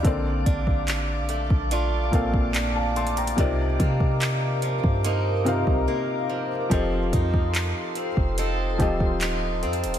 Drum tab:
HH |x---x---x---x---x---x---x---xxxx|x---x---x---x---x---x-----------|x---x---x---x---x---x---x---xxxx|
CP |--------x---------------x-------|--------x-----------------------|--------x---------------x-------|
BD |o---o-o-------o-----o-o---------|o---o-o-------o-------o---------|o---o-o-------o-----o-o---------|